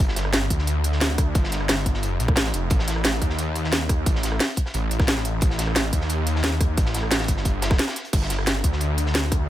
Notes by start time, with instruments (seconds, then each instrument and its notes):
0.00 detuned saw bass G1, closed hi-hat
0.08 snare
0.16 snare, closed hi-hat
0.25 cross-stick
0.33 snare, closed hi-hat
0.50 detuned saw bass D2, kick, closed hi-hat
0.59 snare
0.67 closed hi-hat
0.84 closed hi-hat
0.92 snare
1.01 snare, closed hi-hat
1.18 kick, cross-stick, closed hi-hat
1.35 detuned saw bass G1, kick, closed hi-hat
1.44 snare
1.52 snare, closed hi-hat
1.61 cross-stick
1.69 detuned saw bass G1, snare, closed hi-hat, open hi-hat
1.77 snare
1.86 kick, closed hi-hat
1.94 snare
2.03 closed hi-hat
2.20 detuned saw bass A#1, closed hi-hat
2.28 kick, cross-stick
2.36 detuned saw bass A1, snare, closed hi-hat
2.45 snare
2.54 detuned saw bass F1, closed hi-hat
2.70 detuned saw bass A1, kick, closed hi-hat
2.79 snare
2.87 snare, closed hi-hat
2.96 cross-stick
3.04 snare, closed hi-hat
3.22 detuned saw bass D#2, kick, closed hi-hat
3.30 snare
3.39 closed hi-hat
3.56 closed hi-hat
3.64 snare
3.72 snare, closed hi-hat
3.89 kick, cross-stick, closed hi-hat
4.06 detuned saw bass A1, kick, closed hi-hat
4.15 snare
4.23 snare, closed hi-hat
4.32 cross-stick
4.40 snare, closed hi-hat, open hi-hat
4.49 snare
4.56 kick, closed hi-hat
4.66 snare
4.74 detuned saw bass A1, closed hi-hat
4.91 closed hi-hat
5.00 kick, cross-stick, snare
5.08 snare, closed hi-hat
5.16 snare
5.25 closed hi-hat
5.41 detuned saw bass A1, kick, closed hi-hat
5.50 snare
5.59 snare, closed hi-hat
5.67 cross-stick
5.76 snare, closed hi-hat
5.93 detuned saw bass D#2, kick, closed hi-hat
6.01 snare
6.09 closed hi-hat
6.27 closed hi-hat
6.36 snare
6.43 snare, closed hi-hat
6.61 kick, cross-stick, closed hi-hat
6.77 detuned saw bass A1, kick, closed hi-hat
6.86 snare
6.94 snare, closed hi-hat
7.03 cross-stick
7.11 detuned saw bass A1, snare, closed hi-hat, open hi-hat
7.20 snare
7.28 detuned saw bass G1, kick, closed hi-hat
7.37 snare
7.45 kick, closed hi-hat
7.62 snare, closed hi-hat
7.71 kick, cross-stick, snare
7.79 snare, closed hi-hat
7.88 snare, closed hi-hat
7.96 snare, closed hi-hat
8.05 closed hi-hat
8.13 detuned saw bass G1, kick, closed hi-hat, crash
8.22 snare
8.30 snare, closed hi-hat
8.39 cross-stick
8.47 snare, closed hi-hat
8.64 detuned saw bass D2, kick, closed hi-hat
8.72 snare
8.80 closed hi-hat
8.98 closed hi-hat
9.06 snare
9.15 snare, closed hi-hat
9.32 kick, cross-stick, closed hi-hat